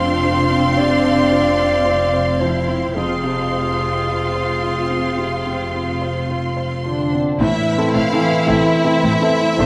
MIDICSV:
0, 0, Header, 1, 9, 480
1, 0, Start_track
1, 0, Tempo, 1075269
1, 830, Tempo, 1102941
1, 1309, Time_signature, 4, 2, 24, 8
1, 4224, End_track
2, 0, Start_track
2, 0, Title_t, "Violin section"
2, 0, Program_c, 0, 48
2, 0, Note_on_c, 0, 84, 56
2, 1297, Note_off_c, 0, 84, 0
2, 1308, Note_on_c, 0, 84, 41
2, 3134, Note_off_c, 0, 84, 0
2, 3248, Note_on_c, 0, 76, 75
2, 3463, Note_off_c, 0, 76, 0
2, 3478, Note_on_c, 0, 77, 73
2, 3712, Note_off_c, 0, 77, 0
2, 3716, Note_on_c, 0, 76, 79
2, 4224, Note_off_c, 0, 76, 0
2, 4224, End_track
3, 0, Start_track
3, 0, Title_t, "Violin section"
3, 0, Program_c, 1, 48
3, 0, Note_on_c, 1, 77, 64
3, 1296, Note_off_c, 1, 77, 0
3, 1312, Note_on_c, 1, 77, 48
3, 2985, Note_off_c, 1, 77, 0
3, 3004, Note_on_c, 1, 62, 59
3, 3225, Note_off_c, 1, 62, 0
3, 3243, Note_on_c, 1, 64, 87
3, 4193, Note_off_c, 1, 64, 0
3, 4194, Note_on_c, 1, 72, 104
3, 4224, Note_off_c, 1, 72, 0
3, 4224, End_track
4, 0, Start_track
4, 0, Title_t, "Clarinet"
4, 0, Program_c, 2, 71
4, 0, Note_on_c, 2, 65, 68
4, 349, Note_on_c, 2, 74, 83
4, 355, Note_off_c, 2, 65, 0
4, 1064, Note_on_c, 2, 72, 57
4, 1071, Note_off_c, 2, 74, 0
4, 1304, Note_on_c, 2, 68, 52
4, 1310, Note_off_c, 2, 72, 0
4, 2758, Note_off_c, 2, 68, 0
4, 4224, End_track
5, 0, Start_track
5, 0, Title_t, "Grand piano"
5, 0, Program_c, 3, 0
5, 0, Control_c, 3, 64, 127
5, 0, Note_on_c, 3, 41, 51
5, 0, Note_on_c, 3, 60, 39
5, 0, Note_on_c, 3, 65, 41
5, 0, Note_on_c, 3, 72, 38
5, 60, Note_off_c, 3, 65, 0
5, 106, Note_on_c, 3, 65, 39
5, 179, Note_off_c, 3, 72, 0
5, 228, Note_off_c, 3, 60, 0
5, 228, Note_on_c, 3, 60, 38
5, 301, Note_off_c, 3, 65, 0
5, 334, Note_off_c, 3, 41, 0
5, 352, Note_on_c, 3, 48, 33
5, 421, Note_off_c, 3, 60, 0
5, 470, Note_on_c, 3, 60, 38
5, 543, Note_off_c, 3, 48, 0
5, 588, Note_on_c, 3, 65, 34
5, 661, Note_off_c, 3, 60, 0
5, 709, Note_on_c, 3, 72, 39
5, 781, Note_off_c, 3, 65, 0
5, 828, Note_on_c, 3, 65, 37
5, 901, Note_off_c, 3, 72, 0
5, 949, Note_on_c, 3, 72, 33
5, 1019, Note_off_c, 3, 65, 0
5, 1071, Note_on_c, 3, 53, 32
5, 1141, Note_off_c, 3, 72, 0
5, 1187, Note_on_c, 3, 60, 28
5, 1262, Note_off_c, 3, 53, 0
5, 1310, Note_on_c, 3, 41, 38
5, 1318, Control_c, 3, 64, 0
5, 1381, Note_off_c, 3, 60, 0
5, 1405, Control_c, 3, 64, 127
5, 1429, Note_on_c, 3, 48, 31
5, 1556, Note_on_c, 3, 65, 32
5, 1623, Note_off_c, 3, 48, 0
5, 1676, Note_on_c, 3, 72, 30
5, 1748, Note_off_c, 3, 65, 0
5, 1794, Note_on_c, 3, 65, 31
5, 1869, Note_off_c, 3, 72, 0
5, 1916, Note_on_c, 3, 72, 30
5, 1989, Note_off_c, 3, 65, 0
5, 2038, Note_on_c, 3, 65, 29
5, 2110, Note_off_c, 3, 72, 0
5, 2155, Note_on_c, 3, 60, 27
5, 2232, Note_off_c, 3, 65, 0
5, 2263, Note_off_c, 3, 41, 0
5, 2279, Note_on_c, 3, 48, 28
5, 2350, Note_off_c, 3, 60, 0
5, 2398, Note_on_c, 3, 60, 27
5, 2472, Note_off_c, 3, 48, 0
5, 2521, Note_on_c, 3, 65, 28
5, 2591, Note_off_c, 3, 60, 0
5, 2639, Note_on_c, 3, 72, 29
5, 2713, Note_off_c, 3, 65, 0
5, 2766, Note_on_c, 3, 65, 29
5, 2832, Note_off_c, 3, 72, 0
5, 2879, Note_on_c, 3, 72, 27
5, 2956, Note_off_c, 3, 65, 0
5, 3007, Note_on_c, 3, 65, 29
5, 3073, Note_off_c, 3, 72, 0
5, 3130, Note_on_c, 3, 60, 28
5, 3195, Note_off_c, 3, 65, 0
5, 3244, Note_off_c, 3, 60, 0
5, 3246, Note_on_c, 3, 45, 59
5, 3247, Control_c, 3, 64, 0
5, 3315, Control_c, 3, 64, 127
5, 3395, Note_off_c, 3, 45, 0
5, 3405, Note_on_c, 3, 60, 49
5, 3408, Note_on_c, 3, 64, 45
5, 3409, Note_on_c, 3, 69, 53
5, 3542, Note_off_c, 3, 60, 0
5, 3544, Note_off_c, 3, 64, 0
5, 3545, Note_off_c, 3, 69, 0
5, 3557, Note_on_c, 3, 52, 49
5, 3558, Note_on_c, 3, 60, 45
5, 3561, Note_on_c, 3, 69, 47
5, 3697, Note_off_c, 3, 52, 0
5, 3697, Note_off_c, 3, 60, 0
5, 3699, Note_off_c, 3, 69, 0
5, 3708, Note_on_c, 3, 60, 44
5, 3712, Note_on_c, 3, 64, 48
5, 3712, Note_on_c, 3, 69, 50
5, 3852, Note_off_c, 3, 60, 0
5, 3854, Note_off_c, 3, 64, 0
5, 3854, Note_off_c, 3, 69, 0
5, 3869, Note_on_c, 3, 60, 46
5, 3872, Note_on_c, 3, 64, 45
5, 3873, Note_on_c, 3, 69, 48
5, 4015, Note_off_c, 3, 60, 0
5, 4016, Note_off_c, 3, 64, 0
5, 4017, Note_off_c, 3, 69, 0
5, 4031, Note_on_c, 3, 60, 48
5, 4035, Note_on_c, 3, 64, 45
5, 4035, Note_on_c, 3, 69, 49
5, 4175, Note_off_c, 3, 60, 0
5, 4177, Note_off_c, 3, 64, 0
5, 4177, Note_off_c, 3, 69, 0
5, 4193, Note_on_c, 3, 40, 53
5, 4224, Note_off_c, 3, 40, 0
5, 4224, End_track
6, 0, Start_track
6, 0, Title_t, "Viola section"
6, 0, Program_c, 4, 48
6, 0, Note_on_c, 4, 60, 62
6, 1292, Note_off_c, 4, 60, 0
6, 1312, Note_on_c, 4, 60, 44
6, 3136, Note_off_c, 4, 60, 0
6, 3239, Note_on_c, 4, 60, 59
6, 3241, Note_on_c, 4, 57, 58
6, 3274, Note_off_c, 4, 60, 0
6, 3276, Note_off_c, 4, 57, 0
6, 3474, Note_on_c, 4, 57, 56
6, 3475, Note_on_c, 4, 60, 56
6, 3509, Note_off_c, 4, 57, 0
6, 3510, Note_off_c, 4, 60, 0
6, 3706, Note_on_c, 4, 57, 52
6, 3707, Note_on_c, 4, 60, 50
6, 3741, Note_off_c, 4, 57, 0
6, 3741, Note_off_c, 4, 60, 0
6, 3948, Note_on_c, 4, 57, 52
6, 3949, Note_on_c, 4, 60, 55
6, 3983, Note_off_c, 4, 57, 0
6, 3984, Note_off_c, 4, 60, 0
6, 4194, Note_on_c, 4, 57, 58
6, 4194, Note_on_c, 4, 60, 56
6, 4224, Note_off_c, 4, 57, 0
6, 4224, Note_off_c, 4, 60, 0
6, 4224, End_track
7, 0, Start_track
7, 0, Title_t, "French horn section"
7, 0, Program_c, 5, 60
7, 3013, Note_on_c, 5, 50, 51
7, 3230, Note_off_c, 5, 50, 0
7, 3252, Note_on_c, 5, 52, 68
7, 4197, Note_off_c, 5, 52, 0
7, 4199, Note_on_c, 5, 60, 89
7, 4224, Note_off_c, 5, 60, 0
7, 4224, End_track
8, 0, Start_track
8, 0, Title_t, "Cello section"
8, 0, Program_c, 6, 48
8, 0, Note_on_c, 6, 62, 62
8, 812, Note_off_c, 6, 62, 0
8, 832, Note_on_c, 6, 60, 49
8, 1069, Note_off_c, 6, 60, 0
8, 1073, Note_on_c, 6, 64, 46
8, 1312, Note_off_c, 6, 64, 0
8, 1313, Note_on_c, 6, 65, 41
8, 3004, Note_off_c, 6, 65, 0
8, 3243, Note_on_c, 6, 45, 64
8, 3278, Note_off_c, 6, 45, 0
8, 3480, Note_on_c, 6, 45, 59
8, 3515, Note_off_c, 6, 45, 0
8, 3716, Note_on_c, 6, 45, 60
8, 3751, Note_off_c, 6, 45, 0
8, 3953, Note_on_c, 6, 45, 55
8, 3988, Note_off_c, 6, 45, 0
8, 4191, Note_on_c, 6, 45, 58
8, 4224, Note_off_c, 6, 45, 0
8, 4224, End_track
9, 0, Start_track
9, 0, Title_t, "Double bass section"
9, 0, Program_c, 7, 48
9, 0, Note_on_c, 7, 29, 57
9, 1291, Note_off_c, 7, 29, 0
9, 1313, Note_on_c, 7, 29, 42
9, 3136, Note_off_c, 7, 29, 0
9, 3244, Note_on_c, 7, 33, 71
9, 3279, Note_off_c, 7, 33, 0
9, 3480, Note_on_c, 7, 33, 53
9, 3515, Note_off_c, 7, 33, 0
9, 3718, Note_on_c, 7, 33, 62
9, 3753, Note_off_c, 7, 33, 0
9, 3955, Note_on_c, 7, 33, 63
9, 3990, Note_off_c, 7, 33, 0
9, 4195, Note_on_c, 7, 33, 62
9, 4224, Note_off_c, 7, 33, 0
9, 4224, End_track
0, 0, End_of_file